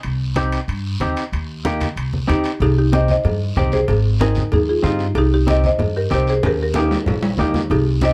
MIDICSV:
0, 0, Header, 1, 5, 480
1, 0, Start_track
1, 0, Key_signature, -3, "minor"
1, 0, Tempo, 318810
1, 77, Time_signature, 4, 2, 24, 8
1, 12244, End_track
2, 0, Start_track
2, 0, Title_t, "Marimba"
2, 0, Program_c, 0, 12
2, 3450, Note_on_c, 0, 67, 82
2, 3454, Note_on_c, 0, 63, 65
2, 3893, Note_off_c, 0, 67, 0
2, 3895, Note_off_c, 0, 63, 0
2, 3945, Note_on_c, 0, 63, 72
2, 3946, Note_on_c, 0, 67, 101
2, 4158, Note_off_c, 0, 63, 0
2, 4175, Note_off_c, 0, 67, 0
2, 4194, Note_on_c, 0, 67, 87
2, 4195, Note_on_c, 0, 63, 70
2, 4295, Note_off_c, 0, 67, 0
2, 4296, Note_off_c, 0, 63, 0
2, 4439, Note_on_c, 0, 75, 102
2, 4445, Note_on_c, 0, 72, 80
2, 4539, Note_off_c, 0, 75, 0
2, 4543, Note_off_c, 0, 72, 0
2, 4683, Note_on_c, 0, 72, 79
2, 4685, Note_on_c, 0, 75, 111
2, 5334, Note_off_c, 0, 72, 0
2, 5334, Note_off_c, 0, 75, 0
2, 5406, Note_on_c, 0, 72, 93
2, 5411, Note_on_c, 0, 67, 74
2, 5504, Note_off_c, 0, 72, 0
2, 5508, Note_off_c, 0, 67, 0
2, 5615, Note_on_c, 0, 72, 96
2, 5620, Note_on_c, 0, 68, 83
2, 6279, Note_off_c, 0, 72, 0
2, 6281, Note_off_c, 0, 68, 0
2, 6333, Note_on_c, 0, 63, 71
2, 6340, Note_on_c, 0, 70, 93
2, 6774, Note_off_c, 0, 63, 0
2, 6778, Note_off_c, 0, 70, 0
2, 6828, Note_on_c, 0, 63, 69
2, 6830, Note_on_c, 0, 68, 83
2, 7039, Note_off_c, 0, 63, 0
2, 7040, Note_off_c, 0, 68, 0
2, 7066, Note_on_c, 0, 68, 84
2, 7074, Note_on_c, 0, 65, 60
2, 7278, Note_off_c, 0, 68, 0
2, 7282, Note_off_c, 0, 65, 0
2, 7322, Note_on_c, 0, 67, 87
2, 7332, Note_on_c, 0, 63, 72
2, 7749, Note_off_c, 0, 67, 0
2, 7755, Note_off_c, 0, 63, 0
2, 7798, Note_on_c, 0, 67, 97
2, 7805, Note_on_c, 0, 63, 83
2, 8004, Note_off_c, 0, 67, 0
2, 8007, Note_off_c, 0, 63, 0
2, 8039, Note_on_c, 0, 67, 96
2, 8041, Note_on_c, 0, 63, 67
2, 8244, Note_off_c, 0, 67, 0
2, 8246, Note_off_c, 0, 63, 0
2, 8284, Note_on_c, 0, 72, 86
2, 8288, Note_on_c, 0, 75, 107
2, 8487, Note_off_c, 0, 72, 0
2, 8489, Note_off_c, 0, 75, 0
2, 8523, Note_on_c, 0, 75, 98
2, 8530, Note_on_c, 0, 72, 88
2, 8949, Note_off_c, 0, 75, 0
2, 8953, Note_off_c, 0, 72, 0
2, 8981, Note_on_c, 0, 67, 69
2, 8989, Note_on_c, 0, 70, 83
2, 9194, Note_off_c, 0, 67, 0
2, 9198, Note_off_c, 0, 70, 0
2, 9248, Note_on_c, 0, 67, 75
2, 9257, Note_on_c, 0, 72, 103
2, 9345, Note_off_c, 0, 67, 0
2, 9352, Note_off_c, 0, 72, 0
2, 9478, Note_on_c, 0, 72, 100
2, 9479, Note_on_c, 0, 68, 72
2, 9683, Note_off_c, 0, 72, 0
2, 9684, Note_off_c, 0, 68, 0
2, 9734, Note_on_c, 0, 67, 82
2, 9742, Note_on_c, 0, 70, 94
2, 9931, Note_off_c, 0, 67, 0
2, 9956, Note_off_c, 0, 70, 0
2, 9974, Note_on_c, 0, 67, 64
2, 9978, Note_on_c, 0, 70, 85
2, 10069, Note_off_c, 0, 67, 0
2, 10072, Note_off_c, 0, 70, 0
2, 10215, Note_on_c, 0, 63, 75
2, 10221, Note_on_c, 0, 67, 89
2, 11086, Note_off_c, 0, 63, 0
2, 11089, Note_off_c, 0, 67, 0
2, 11151, Note_on_c, 0, 63, 72
2, 11153, Note_on_c, 0, 67, 81
2, 11582, Note_off_c, 0, 63, 0
2, 11583, Note_off_c, 0, 67, 0
2, 11605, Note_on_c, 0, 63, 72
2, 11614, Note_on_c, 0, 67, 99
2, 12048, Note_off_c, 0, 63, 0
2, 12099, Note_off_c, 0, 67, 0
2, 12123, Note_on_c, 0, 72, 77
2, 12125, Note_on_c, 0, 75, 108
2, 12244, Note_off_c, 0, 72, 0
2, 12244, Note_off_c, 0, 75, 0
2, 12244, End_track
3, 0, Start_track
3, 0, Title_t, "Clean electric guitar"
3, 0, Program_c, 1, 27
3, 546, Note_on_c, 1, 60, 91
3, 549, Note_on_c, 1, 63, 67
3, 559, Note_on_c, 1, 67, 95
3, 889, Note_off_c, 1, 63, 0
3, 890, Note_off_c, 1, 60, 0
3, 895, Note_off_c, 1, 67, 0
3, 1519, Note_on_c, 1, 60, 79
3, 1529, Note_on_c, 1, 63, 69
3, 1536, Note_on_c, 1, 67, 80
3, 1858, Note_off_c, 1, 60, 0
3, 1859, Note_off_c, 1, 63, 0
3, 1859, Note_off_c, 1, 67, 0
3, 2482, Note_on_c, 1, 58, 86
3, 2488, Note_on_c, 1, 63, 75
3, 2504, Note_on_c, 1, 67, 88
3, 2818, Note_off_c, 1, 58, 0
3, 2821, Note_off_c, 1, 63, 0
3, 2829, Note_off_c, 1, 67, 0
3, 3425, Note_on_c, 1, 60, 82
3, 3433, Note_on_c, 1, 63, 83
3, 3440, Note_on_c, 1, 67, 90
3, 3770, Note_off_c, 1, 60, 0
3, 3774, Note_off_c, 1, 63, 0
3, 3777, Note_off_c, 1, 67, 0
3, 4405, Note_on_c, 1, 60, 65
3, 4411, Note_on_c, 1, 63, 65
3, 4418, Note_on_c, 1, 67, 74
3, 4740, Note_off_c, 1, 60, 0
3, 4743, Note_off_c, 1, 63, 0
3, 4747, Note_off_c, 1, 67, 0
3, 5375, Note_on_c, 1, 60, 80
3, 5377, Note_on_c, 1, 63, 55
3, 5380, Note_on_c, 1, 67, 79
3, 5704, Note_off_c, 1, 63, 0
3, 5705, Note_off_c, 1, 60, 0
3, 5707, Note_off_c, 1, 67, 0
3, 6333, Note_on_c, 1, 60, 64
3, 6339, Note_on_c, 1, 63, 68
3, 6351, Note_on_c, 1, 68, 69
3, 6664, Note_off_c, 1, 60, 0
3, 6667, Note_off_c, 1, 63, 0
3, 6670, Note_off_c, 1, 68, 0
3, 7267, Note_on_c, 1, 60, 71
3, 7282, Note_on_c, 1, 65, 89
3, 7284, Note_on_c, 1, 63, 64
3, 7612, Note_off_c, 1, 60, 0
3, 7615, Note_off_c, 1, 63, 0
3, 7618, Note_off_c, 1, 65, 0
3, 8233, Note_on_c, 1, 60, 75
3, 8239, Note_on_c, 1, 63, 73
3, 8252, Note_on_c, 1, 67, 73
3, 8572, Note_off_c, 1, 60, 0
3, 8576, Note_off_c, 1, 63, 0
3, 8579, Note_off_c, 1, 67, 0
3, 9196, Note_on_c, 1, 60, 78
3, 9206, Note_on_c, 1, 63, 58
3, 9207, Note_on_c, 1, 67, 83
3, 9535, Note_off_c, 1, 60, 0
3, 9535, Note_off_c, 1, 63, 0
3, 9539, Note_off_c, 1, 67, 0
3, 10167, Note_on_c, 1, 58, 67
3, 10179, Note_on_c, 1, 67, 79
3, 10180, Note_on_c, 1, 63, 56
3, 10499, Note_off_c, 1, 58, 0
3, 10502, Note_off_c, 1, 63, 0
3, 10505, Note_off_c, 1, 67, 0
3, 11118, Note_on_c, 1, 58, 64
3, 11124, Note_on_c, 1, 63, 67
3, 11131, Note_on_c, 1, 67, 64
3, 11454, Note_off_c, 1, 58, 0
3, 11457, Note_off_c, 1, 67, 0
3, 11458, Note_off_c, 1, 63, 0
3, 12080, Note_on_c, 1, 60, 70
3, 12087, Note_on_c, 1, 63, 60
3, 12100, Note_on_c, 1, 67, 74
3, 12244, Note_off_c, 1, 60, 0
3, 12244, Note_off_c, 1, 63, 0
3, 12244, Note_off_c, 1, 67, 0
3, 12244, End_track
4, 0, Start_track
4, 0, Title_t, "Upright bass"
4, 0, Program_c, 2, 32
4, 65, Note_on_c, 2, 36, 83
4, 839, Note_off_c, 2, 36, 0
4, 1023, Note_on_c, 2, 43, 100
4, 1414, Note_off_c, 2, 43, 0
4, 1516, Note_on_c, 2, 39, 73
4, 1710, Note_off_c, 2, 39, 0
4, 1993, Note_on_c, 2, 39, 90
4, 2765, Note_off_c, 2, 39, 0
4, 2952, Note_on_c, 2, 36, 82
4, 3340, Note_off_c, 2, 36, 0
4, 3446, Note_on_c, 2, 39, 82
4, 3636, Note_off_c, 2, 39, 0
4, 3917, Note_on_c, 2, 36, 111
4, 4687, Note_off_c, 2, 36, 0
4, 4888, Note_on_c, 2, 43, 96
4, 5270, Note_off_c, 2, 43, 0
4, 5364, Note_on_c, 2, 36, 81
4, 5747, Note_off_c, 2, 36, 0
4, 5845, Note_on_c, 2, 32, 104
4, 6612, Note_off_c, 2, 32, 0
4, 6805, Note_on_c, 2, 39, 91
4, 7188, Note_off_c, 2, 39, 0
4, 7278, Note_on_c, 2, 43, 98
4, 7663, Note_off_c, 2, 43, 0
4, 7750, Note_on_c, 2, 36, 104
4, 8522, Note_off_c, 2, 36, 0
4, 8709, Note_on_c, 2, 43, 93
4, 9097, Note_off_c, 2, 43, 0
4, 9206, Note_on_c, 2, 36, 85
4, 9587, Note_off_c, 2, 36, 0
4, 9685, Note_on_c, 2, 39, 105
4, 10450, Note_off_c, 2, 39, 0
4, 10649, Note_on_c, 2, 34, 80
4, 11028, Note_off_c, 2, 34, 0
4, 11126, Note_on_c, 2, 39, 94
4, 11506, Note_off_c, 2, 39, 0
4, 11602, Note_on_c, 2, 36, 99
4, 12244, Note_off_c, 2, 36, 0
4, 12244, End_track
5, 0, Start_track
5, 0, Title_t, "Drums"
5, 49, Note_on_c, 9, 65, 70
5, 61, Note_on_c, 9, 63, 35
5, 63, Note_on_c, 9, 74, 58
5, 200, Note_off_c, 9, 65, 0
5, 212, Note_off_c, 9, 63, 0
5, 214, Note_off_c, 9, 74, 0
5, 540, Note_on_c, 9, 65, 70
5, 541, Note_on_c, 9, 63, 84
5, 541, Note_on_c, 9, 73, 69
5, 690, Note_off_c, 9, 65, 0
5, 692, Note_off_c, 9, 63, 0
5, 692, Note_off_c, 9, 73, 0
5, 789, Note_on_c, 9, 65, 69
5, 790, Note_on_c, 9, 73, 72
5, 939, Note_off_c, 9, 65, 0
5, 940, Note_off_c, 9, 73, 0
5, 1023, Note_on_c, 9, 63, 39
5, 1026, Note_on_c, 9, 74, 80
5, 1039, Note_on_c, 9, 65, 65
5, 1174, Note_off_c, 9, 63, 0
5, 1177, Note_off_c, 9, 74, 0
5, 1189, Note_off_c, 9, 65, 0
5, 1507, Note_on_c, 9, 63, 76
5, 1518, Note_on_c, 9, 65, 63
5, 1524, Note_on_c, 9, 73, 67
5, 1658, Note_off_c, 9, 63, 0
5, 1668, Note_off_c, 9, 65, 0
5, 1674, Note_off_c, 9, 73, 0
5, 1755, Note_on_c, 9, 73, 72
5, 1762, Note_on_c, 9, 65, 67
5, 1906, Note_off_c, 9, 73, 0
5, 1913, Note_off_c, 9, 65, 0
5, 2002, Note_on_c, 9, 74, 65
5, 2008, Note_on_c, 9, 63, 30
5, 2008, Note_on_c, 9, 65, 73
5, 2152, Note_off_c, 9, 74, 0
5, 2158, Note_off_c, 9, 65, 0
5, 2159, Note_off_c, 9, 63, 0
5, 2481, Note_on_c, 9, 73, 69
5, 2483, Note_on_c, 9, 63, 95
5, 2495, Note_on_c, 9, 65, 59
5, 2632, Note_off_c, 9, 73, 0
5, 2634, Note_off_c, 9, 63, 0
5, 2646, Note_off_c, 9, 65, 0
5, 2717, Note_on_c, 9, 73, 69
5, 2729, Note_on_c, 9, 65, 69
5, 2734, Note_on_c, 9, 63, 70
5, 2867, Note_off_c, 9, 73, 0
5, 2880, Note_off_c, 9, 65, 0
5, 2885, Note_off_c, 9, 63, 0
5, 2965, Note_on_c, 9, 74, 71
5, 2969, Note_on_c, 9, 63, 40
5, 2972, Note_on_c, 9, 65, 74
5, 3115, Note_off_c, 9, 74, 0
5, 3120, Note_off_c, 9, 63, 0
5, 3122, Note_off_c, 9, 65, 0
5, 3210, Note_on_c, 9, 63, 67
5, 3360, Note_off_c, 9, 63, 0
5, 3437, Note_on_c, 9, 73, 72
5, 3455, Note_on_c, 9, 65, 76
5, 3456, Note_on_c, 9, 63, 86
5, 3588, Note_off_c, 9, 73, 0
5, 3605, Note_off_c, 9, 65, 0
5, 3606, Note_off_c, 9, 63, 0
5, 3669, Note_on_c, 9, 73, 67
5, 3696, Note_on_c, 9, 65, 69
5, 3819, Note_off_c, 9, 73, 0
5, 3847, Note_off_c, 9, 65, 0
5, 3920, Note_on_c, 9, 74, 66
5, 3924, Note_on_c, 9, 64, 67
5, 3942, Note_on_c, 9, 56, 112
5, 4070, Note_off_c, 9, 74, 0
5, 4075, Note_off_c, 9, 64, 0
5, 4092, Note_off_c, 9, 56, 0
5, 4160, Note_on_c, 9, 63, 32
5, 4311, Note_off_c, 9, 63, 0
5, 4401, Note_on_c, 9, 73, 65
5, 4414, Note_on_c, 9, 63, 94
5, 4552, Note_off_c, 9, 73, 0
5, 4564, Note_off_c, 9, 63, 0
5, 4642, Note_on_c, 9, 73, 72
5, 4645, Note_on_c, 9, 63, 75
5, 4793, Note_off_c, 9, 73, 0
5, 4796, Note_off_c, 9, 63, 0
5, 4873, Note_on_c, 9, 74, 69
5, 4889, Note_on_c, 9, 56, 87
5, 4890, Note_on_c, 9, 63, 36
5, 4890, Note_on_c, 9, 64, 96
5, 5023, Note_off_c, 9, 74, 0
5, 5039, Note_off_c, 9, 56, 0
5, 5041, Note_off_c, 9, 63, 0
5, 5041, Note_off_c, 9, 64, 0
5, 5361, Note_on_c, 9, 73, 75
5, 5368, Note_on_c, 9, 63, 79
5, 5368, Note_on_c, 9, 64, 74
5, 5512, Note_off_c, 9, 73, 0
5, 5519, Note_off_c, 9, 63, 0
5, 5519, Note_off_c, 9, 64, 0
5, 5601, Note_on_c, 9, 73, 72
5, 5615, Note_on_c, 9, 63, 66
5, 5752, Note_off_c, 9, 73, 0
5, 5766, Note_off_c, 9, 63, 0
5, 5843, Note_on_c, 9, 56, 112
5, 5843, Note_on_c, 9, 74, 63
5, 5862, Note_on_c, 9, 64, 73
5, 5993, Note_off_c, 9, 56, 0
5, 5994, Note_off_c, 9, 74, 0
5, 6012, Note_off_c, 9, 64, 0
5, 6106, Note_on_c, 9, 63, 36
5, 6257, Note_off_c, 9, 63, 0
5, 6316, Note_on_c, 9, 73, 72
5, 6337, Note_on_c, 9, 63, 99
5, 6466, Note_off_c, 9, 73, 0
5, 6487, Note_off_c, 9, 63, 0
5, 6547, Note_on_c, 9, 73, 74
5, 6576, Note_on_c, 9, 63, 71
5, 6697, Note_off_c, 9, 73, 0
5, 6727, Note_off_c, 9, 63, 0
5, 6802, Note_on_c, 9, 74, 72
5, 6803, Note_on_c, 9, 56, 82
5, 6817, Note_on_c, 9, 63, 38
5, 6817, Note_on_c, 9, 64, 89
5, 6953, Note_off_c, 9, 56, 0
5, 6953, Note_off_c, 9, 74, 0
5, 6968, Note_off_c, 9, 63, 0
5, 6968, Note_off_c, 9, 64, 0
5, 7279, Note_on_c, 9, 73, 75
5, 7285, Note_on_c, 9, 63, 89
5, 7430, Note_off_c, 9, 73, 0
5, 7435, Note_off_c, 9, 63, 0
5, 7513, Note_on_c, 9, 73, 74
5, 7664, Note_off_c, 9, 73, 0
5, 7756, Note_on_c, 9, 56, 108
5, 7767, Note_on_c, 9, 74, 67
5, 7907, Note_off_c, 9, 56, 0
5, 7918, Note_off_c, 9, 74, 0
5, 8015, Note_on_c, 9, 63, 29
5, 8166, Note_off_c, 9, 63, 0
5, 8247, Note_on_c, 9, 63, 86
5, 8252, Note_on_c, 9, 73, 79
5, 8398, Note_off_c, 9, 63, 0
5, 8403, Note_off_c, 9, 73, 0
5, 8487, Note_on_c, 9, 63, 66
5, 8489, Note_on_c, 9, 73, 66
5, 8637, Note_off_c, 9, 63, 0
5, 8640, Note_off_c, 9, 73, 0
5, 8716, Note_on_c, 9, 56, 85
5, 8726, Note_on_c, 9, 63, 39
5, 8726, Note_on_c, 9, 64, 91
5, 8739, Note_on_c, 9, 74, 71
5, 8866, Note_off_c, 9, 56, 0
5, 8876, Note_off_c, 9, 63, 0
5, 8876, Note_off_c, 9, 64, 0
5, 8890, Note_off_c, 9, 74, 0
5, 9197, Note_on_c, 9, 63, 76
5, 9203, Note_on_c, 9, 73, 77
5, 9347, Note_off_c, 9, 63, 0
5, 9354, Note_off_c, 9, 73, 0
5, 9443, Note_on_c, 9, 73, 65
5, 9593, Note_off_c, 9, 73, 0
5, 9683, Note_on_c, 9, 74, 69
5, 9684, Note_on_c, 9, 56, 106
5, 9684, Note_on_c, 9, 65, 107
5, 9685, Note_on_c, 9, 64, 76
5, 9833, Note_off_c, 9, 74, 0
5, 9835, Note_off_c, 9, 56, 0
5, 9835, Note_off_c, 9, 64, 0
5, 9835, Note_off_c, 9, 65, 0
5, 9921, Note_on_c, 9, 63, 28
5, 10071, Note_off_c, 9, 63, 0
5, 10146, Note_on_c, 9, 63, 92
5, 10165, Note_on_c, 9, 65, 99
5, 10166, Note_on_c, 9, 73, 79
5, 10296, Note_off_c, 9, 63, 0
5, 10316, Note_off_c, 9, 65, 0
5, 10317, Note_off_c, 9, 73, 0
5, 10405, Note_on_c, 9, 66, 86
5, 10418, Note_on_c, 9, 73, 67
5, 10555, Note_off_c, 9, 66, 0
5, 10569, Note_off_c, 9, 73, 0
5, 10634, Note_on_c, 9, 63, 37
5, 10634, Note_on_c, 9, 64, 90
5, 10653, Note_on_c, 9, 56, 94
5, 10653, Note_on_c, 9, 66, 90
5, 10666, Note_on_c, 9, 74, 74
5, 10784, Note_off_c, 9, 63, 0
5, 10784, Note_off_c, 9, 64, 0
5, 10804, Note_off_c, 9, 56, 0
5, 10804, Note_off_c, 9, 66, 0
5, 10816, Note_off_c, 9, 74, 0
5, 10879, Note_on_c, 9, 66, 99
5, 11029, Note_off_c, 9, 66, 0
5, 11103, Note_on_c, 9, 63, 77
5, 11120, Note_on_c, 9, 66, 84
5, 11135, Note_on_c, 9, 73, 83
5, 11254, Note_off_c, 9, 63, 0
5, 11270, Note_off_c, 9, 66, 0
5, 11285, Note_off_c, 9, 73, 0
5, 11355, Note_on_c, 9, 63, 73
5, 11359, Note_on_c, 9, 66, 77
5, 11372, Note_on_c, 9, 73, 73
5, 11505, Note_off_c, 9, 63, 0
5, 11509, Note_off_c, 9, 66, 0
5, 11523, Note_off_c, 9, 73, 0
5, 11591, Note_on_c, 9, 64, 68
5, 11604, Note_on_c, 9, 74, 71
5, 11608, Note_on_c, 9, 56, 111
5, 11742, Note_off_c, 9, 64, 0
5, 11755, Note_off_c, 9, 74, 0
5, 11759, Note_off_c, 9, 56, 0
5, 11837, Note_on_c, 9, 63, 29
5, 11987, Note_off_c, 9, 63, 0
5, 12067, Note_on_c, 9, 63, 86
5, 12080, Note_on_c, 9, 73, 77
5, 12217, Note_off_c, 9, 63, 0
5, 12231, Note_off_c, 9, 73, 0
5, 12244, End_track
0, 0, End_of_file